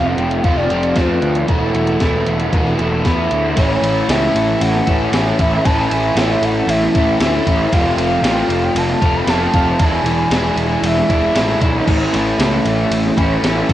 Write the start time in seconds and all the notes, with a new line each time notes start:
Already playing: F1 F2 C3 F3 A3 C4 F4
0.06 G5
0.17 F1, closed hi-hat
0.31 closed hi-hat
0.43 F1 F2 C3 F3 A3 C4 F4 F5, kick, closed hi-hat
0.56 D5, snare
0.69 F1 F3 A3 C4 F4, closed hi-hat
0.83 closed hi-hat
0.95 F2 F3 A3 C4 F4 C5, kick, snare, closed hi-hat
1.09 B4
1.22 D2, closed hi-hat
1.35 closed hi-hat
1.47 E1 E2 B2 E3 A3 B3 E4 A4, kick, closed hi-hat
1.74 E1, closed hi-hat
1.87 closed hi-hat
2.00 E1 E3 A3 B3 E4, kick, snare, closed hi-hat
2.27 E1, closed hi-hat
2.40 closed hi-hat
2.53 E1 E2 B2 E3 A3 B3 E4, kick, closed hi-hat
2.67 snare
2.79 E1 E3 A3 B3 E4, closed hi-hat
3.04 E2 E3 A3 B3 E4, kick, snare, closed hi-hat
3.31 D2, closed hi-hat
3.57 A1 A2 E3 A3 C#4 E4 C#5, kick, ride
3.82 A1 A3 C#4 E4, ride
4.09 C#2 E3 A3 C#4 E4 E5, snare, ride
4.35 A1, ride
4.61 A1 F#5, ride
4.75 snare
4.87 A1 A3 C#4 E4, kick, ride
5.12 A1 E3 A3 C#4 E4, snare, ride
5.39 A1 A3 C#4 E4 E5, kick, ride
5.64 A1 A2 E3 A3 C#4 E4 A5, kick, ride
5.90 A1 A3 C#4 E4 G#5, ride
6.15 A1 E3 A3 C#4 E4 E5, snare, ride
6.41 A1 F#5, ride
6.67 A1 E5, ride
6.82 snare
6.95 A1 A3 C#4 E4, kick, ride
7.20 D2 E3 A3 C#4 E4 E5, snare, ride
7.47 A1 A3 C#4 E4, kick, ride
7.72 F1 F2 C3 F3 A3 C4 F4 F5, kick, ride
7.97 F1 F3 A3 C4 F4, ride
8.22 A1 F3 A3 C4 F4 F5, snare, ride
8.49 F1, ride
8.63 G5
8.75 F1 A5, ride
8.90 snare
9.02 F1 F3 A3 C4 F4, kick, ride
9.16 B5
9.27 F1 F3 A3 C4 F4 A5, snare, ride
9.54 F1 F3 A3 C4 F4, kick, ride
9.79 E1 E2 B2 E3 G#3 D4 E4 G#5, kick, ride
10.04 E1 G#3 D4 E4, ride
10.08 E3
10.31 E1 E3 G#3 D4 E4, snare, ride
10.56 E1, ride
10.82 E1 E5, ride
10.98 snare
11.09 E1 E3 G#3 D4 E4, kick, ride
11.34 A1 E3 G#3 D4 E4, snare, ride
11.61 B1 E3 G#3 D4 E4, kick, ride
11.86 A1 A2 E3 A3 C#4 E4, kick, crash
12.13 A1 A3 C#4 E4, ride
12.39 C#2 E3 A3 C#4 E4, snare, ride
12.65 A1, ride
12.91 A1, ride
13.05 snare
13.16 A1 A3 C#4 E4, kick, ride
13.43 A1 E3 A3 C#4 E4, snare, ride
13.69 A1 E4, kick, ride